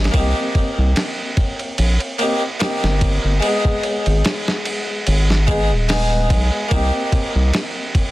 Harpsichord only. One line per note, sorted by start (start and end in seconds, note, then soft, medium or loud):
0.00 0.10 D#4 medium
0.00 0.11 G#4 medium
0.11 2.14 A#3 medium
0.11 2.15 C4 medium
0.16 2.16 D#4 medium
0.16 2.18 G4 medium
2.19 2.40 A#3 medium
2.19 2.40 C4 medium
2.19 2.41 D#4 medium
2.23 2.42 G4 medium
2.59 3.38 A#3 medium
2.59 3.38 C4 medium
2.59 3.39 D#4 medium
2.64 3.40 G4 medium
3.40 5.42 G#3 medium
3.40 5.44 B3 medium
3.45 5.45 D#4 medium
3.45 5.46 G#4 medium
5.47 5.68 G#3 medium
5.47 5.69 B3 medium
5.47 5.70 D#4 medium
5.47 5.70 G#4 medium
5.88 6.67 G#3 medium
5.88 6.67 B3 medium
5.88 6.68 D#4 medium
5.88 6.69 G#4 medium
6.69 8.11 A#3 medium
6.69 8.11 C4 medium
6.74 8.11 D#4 medium
6.74 8.11 G4 medium